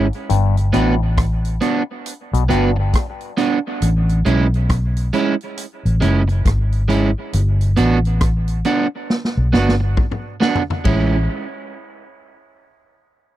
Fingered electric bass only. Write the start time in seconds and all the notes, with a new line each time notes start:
0.31 G1
0.74 A1
2.33 B1
2.50 G1
3.82 A1
4.27 B1
5.85 A1
6.02 F#1
6.46 G#1
7.34 G1
7.79 A1
9.37 B1
9.54 G1
10.86 A1